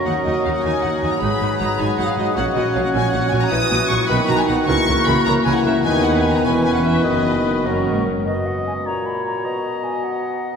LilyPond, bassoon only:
\new Staff \with { instrumentName = "Bassoon" } { \clef bass \time 6/8 \key fis \major \tempo 4. = 103 fis2. | fis2.~ | fis2. | \key b \major e4. dis4. |
e2~ e8 r8 | dis4. e4. | dis4. fis4 r8 | b,4. ais,4. |
b,2. | }